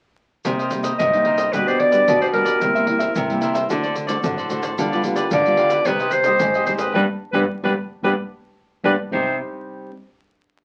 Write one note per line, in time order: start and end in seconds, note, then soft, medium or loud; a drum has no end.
0.45 0.96 C3 medium
0.45 0.67 G3 medium
0.45 0.68 A#3 soft
0.45 0.57 D#4 soft
0.45 0.68 D#4 medium
0.45 0.57 A#4 soft
0.45 0.57 C5 soft
0.45 0.58 D#5 soft
0.45 pandeiro medium
0.45 shaker medium
0.45 surdo medium
0.59 0.71 A#4 medium
0.59 0.71 C5 soft
0.59 0.71 D#5 medium
0.59 pandeiro soft
0.59 shaker soft
0.71 0.97 G3 medium
0.71 0.97 A#3 medium
0.71 0.97 D#4 medium
0.71 muted cavaquinho stroke soft
0.71 pandeiro medium
0.71 shaker medium
0.83 0.97 A#4 medium
0.83 0.97 C5 medium
0.83 0.97 D#5 medium
0.83 pandeiro medium
0.83 shaker medium
0.83 surdo soft
0.99 1.51 G2 medium
0.99 1.45 C3 medium
0.99 1.24 D#4 soft
0.99 1.25 A#4 soft
0.99 1.26 C5 soft
0.99 1.54 D#5 medium
0.99 1.26 D#5 soft
0.99 pandeiro medium
0.99 shaker medium
0.99 surdo medium
1.13 1.49 G3 medium
1.13 1.49 A#3 medium
1.13 1.49 D#4 medium
1.13 pandeiro soft
1.13 shaker soft
1.25 1.38 D#4 medium
1.25 1.38 A#4 medium
1.25 1.38 C5 medium
1.25 1.36 D#5 medium
1.25 pandeiro medium
1.38 1.52 A#4 medium
1.38 1.51 C5 medium
1.38 1.51 D#5 medium
1.38 pandeiro medium
1.38 shaker medium
1.38 surdo soft
1.52 2.05 B2 medium
1.52 1.89 G3 soft
1.52 1.90 B3 medium
1.52 1.65 D4 soft
1.52 1.90 D4 medium
1.52 1.66 G4 soft
1.52 1.69 B4 medium
1.52 1.66 B4 soft
1.52 1.66 D5 soft
1.52 pandeiro medium
1.52 shaker medium
1.52 surdo medium
1.67 1.79 G4 soft
1.67 1.79 B4 medium
1.67 1.81 C5 medium
1.67 1.79 D5 medium
1.67 pandeiro soft
1.67 shaker soft
1.67 surdo soft
1.80 2.21 D5 medium
1.80 muted cavaquinho stroke soft
1.80 pandeiro medium
1.91 2.29 G3 medium
1.91 2.30 B3 medium
1.91 2.30 D4 medium
1.91 2.19 G4 soft
1.91 2.19 B4 medium
1.91 2.18 D5 medium
1.91 pandeiro medium
1.91 shaker medium
1.91 surdo soft
2.08 2.59 B2 soft
2.08 pandeiro medium
2.08 shaker medium
2.08 surdo medium
2.21 2.32 G4 medium
2.21 2.33 B4 medium
2.21 2.27 C5 medium
2.21 2.33 D5 medium
2.21 pandeiro soft
2.21 shaker soft
2.33 2.59 G3 medium
2.33 2.59 B3 medium
2.33 2.46 D4 soft
2.33 2.59 D4 medium
2.33 2.46 G4 soft
2.33 3.38 A#4 medium
2.33 2.44 B4 medium
2.33 2.43 D5 medium
2.33 pandeiro medium
2.44 2.60 G4 medium
2.44 2.59 B4 medium
2.44 2.58 D5 medium
2.44 pandeiro medium
2.44 shaker medium
2.44 surdo soft
2.61 3.13 C3 medium
2.61 2.70 G3 medium
2.61 2.70 A#3 soft
2.61 2.73 E4 soft
2.61 2.71 E4 medium
2.61 2.74 A#4 soft
2.61 2.74 C5 soft
2.61 2.74 E5 soft
2.61 pandeiro medium
2.61 shaker medium
2.61 surdo medium
2.75 2.85 G3 medium
2.75 2.85 A#3 medium
2.75 2.85 E4 medium
2.75 2.86 A#4 soft
2.75 2.85 C5 medium
2.75 2.86 E5 medium
2.75 pandeiro soft
2.75 shaker soft
2.86 3.25 G3 medium
2.86 3.25 A#3 soft
2.86 3.25 E4 medium
2.86 muted cavaquinho stroke soft
2.86 pandeiro medium
2.99 3.14 A#4 soft
2.99 3.13 C5 medium
2.99 3.13 E5 medium
2.99 pandeiro medium
2.99 shaker medium
2.99 surdo soft
3.15 3.67 G2 medium
3.15 3.62 C3 medium
3.15 3.40 E4 soft
3.15 3.41 A#4 soft
3.15 3.42 C5 soft
3.15 3.42 E5 soft
3.15 pandeiro medium
3.15 shaker medium
3.15 surdo medium
3.30 3.66 G3 medium
3.30 3.66 A#3 medium
3.30 3.66 E4 medium
3.30 pandeiro soft
3.30 shaker soft
3.41 3.54 E4 medium
3.41 3.55 A#4 medium
3.41 3.54 C5 medium
3.41 3.53 E5 medium
3.41 pandeiro medium
3.41 shaker medium
3.54 3.69 A#4 soft
3.54 3.68 C5 medium
3.54 3.68 E5 medium
3.54 pandeiro medium
3.54 shaker medium
3.54 surdo soft
3.69 4.21 D3 medium
3.69 4.06 A3 medium
3.69 4.06 C4 medium
3.69 3.82 F#4 soft
3.69 4.07 F#4 medium
3.69 3.82 A4 soft
3.69 3.82 C5 soft
3.69 3.82 D5 medium
3.69 pandeiro medium
3.69 shaker medium
3.69 surdo medium
3.83 3.95 A4 soft
3.83 3.94 C5 medium
3.83 3.95 D5 medium
3.83 pandeiro soft
3.83 shaker soft
3.83 surdo soft
3.95 muted cavaquinho stroke soft
3.95 pandeiro soft
3.95 shaker medium
4.07 4.19 A3 medium
4.07 4.19 C4 medium
4.07 4.19 F#4 medium
4.07 4.36 A4 medium
4.07 4.35 C5 medium
4.07 4.35 D5 medium
4.07 pandeiro medium
4.07 shaker medium
4.07 surdo soft
4.24 4.76 A2 medium
4.24 4.70 D3 medium
4.24 4.47 A3 medium
4.24 4.47 C4 soft
4.24 4.47 F#4 medium
4.24 pandeiro medium
4.24 shaker medium
4.24 surdo medium
4.37 4.49 A4 medium
4.37 4.49 C5 medium
4.37 4.50 D5 medium
4.37 pandeiro soft
4.37 shaker soft
4.50 4.76 A3 medium
4.50 4.76 C4 soft
4.50 4.63 F#4 soft
4.50 4.76 F#4 medium
4.50 4.63 A4 soft
4.50 4.62 C5 medium
4.50 4.61 D5 soft
4.50 pandeiro medium
4.50 shaker medium
4.62 4.77 A4 soft
4.62 4.76 C5 medium
4.62 4.76 D5 medium
4.62 pandeiro medium
4.62 shaker medium
4.62 surdo soft
4.78 5.30 D3 medium
4.78 4.87 G3 medium
4.78 4.87 B3 soft
4.78 4.91 F4 soft
4.78 4.87 F4 medium
4.78 4.91 G4 soft
4.78 4.91 B4 soft
4.78 4.91 D5 soft
4.78 pandeiro medium
4.78 shaker medium
4.78 surdo medium
4.92 5.02 G3 medium
4.92 5.02 B3 medium
4.92 5.02 F4 medium
4.92 5.03 G4 soft
4.92 5.03 B4 medium
4.92 5.03 D5 medium
4.92 pandeiro soft
4.92 shaker soft
5.03 5.41 G3 soft
5.03 5.42 B3 soft
5.03 5.42 F4 medium
5.03 muted cavaquinho stroke soft
5.03 pandeiro medium
5.03 shaker medium
5.16 5.31 G4 soft
5.16 5.30 B4 medium
5.16 5.30 D5 medium
5.16 pandeiro medium
5.16 shaker medium
5.16 surdo soft
5.31 5.84 D3 medium
5.31 5.57 F4 soft
5.31 5.57 G4 soft
5.31 5.58 B4 medium
5.31 5.88 D5 loud
5.31 5.58 D5 soft
5.31 pandeiro medium
5.31 shaker medium
5.31 surdo medium
5.46 5.83 G3 medium
5.46 5.83 B3 medium
5.46 5.83 F4 medium
5.46 pandeiro soft
5.46 shaker soft
5.57 5.71 F4 medium
5.57 5.71 G4 medium
5.57 5.70 B4 medium
5.57 5.69 D5 medium
5.57 pandeiro medium
5.70 5.85 G4 medium
5.70 5.85 B4 medium
5.70 5.84 D5 medium
5.70 pandeiro medium
5.70 shaker medium
5.70 surdo soft
5.85 6.38 C3 medium
5.85 6.12 G3 medium
5.85 6.12 C4 medium
5.85 5.99 D#4 soft
5.85 6.12 D#4 medium
5.85 5.99 G4 medium
5.85 6.13 B4 medium
5.85 5.99 C5 medium
5.85 5.99 D#5 medium
5.85 pandeiro medium
5.85 shaker medium
5.85 surdo medium
6.00 6.12 G4 medium
6.00 6.12 C5 medium
6.00 6.13 D#5 medium
6.00 pandeiro soft
6.00 shaker soft
6.00 surdo soft
6.11 6.65 C5 medium
6.11 muted cavaquinho stroke soft
6.11 pandeiro medium
6.11 shaker medium
6.24 6.63 G3 medium
6.24 6.63 C4 medium
6.24 6.63 D#4 medium
6.24 6.53 G4 medium
6.24 6.53 C5 medium
6.24 6.53 D#5 medium
6.24 pandeiro medium
6.24 shaker medium
6.24 surdo soft
6.39 6.95 G#2 medium
6.39 pandeiro medium
6.39 shaker medium
6.39 surdo medium
6.54 6.66 G4 medium
6.54 6.67 C5 medium
6.54 6.67 D#5 medium
6.54 pandeiro soft
6.54 shaker soft
6.66 6.93 G3 medium
6.66 6.93 C4 medium
6.66 6.80 D#4 soft
6.66 6.93 D#4 medium
6.66 6.80 G4 soft
6.66 6.72 C5 medium
6.66 6.79 C5 soft
6.66 pandeiro medium
6.66 shaker medium
6.78 6.93 G4 medium
6.78 6.93 B4 medium
6.78 6.93 C5 medium
6.78 6.93 D#5 medium
6.78 pandeiro medium
6.78 shaker medium
6.78 surdo soft
6.94 7.05 G2 medium
6.94 7.04 G3 medium
6.94 7.04 B3 medium
6.94 7.04 D4 medium
6.94 7.03 G4 medium
6.94 7.03 B4 medium
6.94 7.01 B4 medium
6.94 7.03 D5 medium
6.94 surdo medium
7.33 7.45 G2 medium
7.33 7.44 G3 medium
7.33 7.43 B3 medium
7.33 7.44 D4 medium
7.33 7.43 G4 medium
7.33 7.40 B4 medium
7.33 7.44 B4 medium
7.33 7.44 D5 medium
7.33 surdo medium
7.63 7.74 G2 medium
7.63 7.72 G3 medium
7.63 7.72 B3 medium
7.63 7.72 D4 medium
7.63 7.72 G4 medium
7.63 7.70 B4 medium
7.63 7.72 B4 medium
7.63 7.72 D5 medium
7.63 surdo medium
8.03 8.14 G2 medium
8.03 8.12 G3 medium
8.03 8.12 B3 medium
8.03 8.12 D4 medium
8.03 8.13 G4 medium
8.03 8.10 B4 medium
8.03 8.13 B4 medium
8.03 8.13 D5 medium
8.03 surdo medium
8.84 8.95 G2 medium
8.84 8.94 G3 medium
8.84 8.94 B3 medium
8.84 8.93 D4 medium
8.84 8.94 G4 medium
8.84 8.91 B4 medium
8.84 8.94 B4 medium
8.84 8.94 D5 medium
8.84 surdo medium
9.11 9.90 C3 medium
9.11 9.90 G3 medium
9.11 9.90 C4 medium
9.11 9.34 D#4 medium
9.11 9.90 D#4 medium
9.11 9.34 G4 medium
9.11 9.37 C5 medium
9.11 9.34 C5 medium
9.11 9.35 D#5 medium
9.11 surdo medium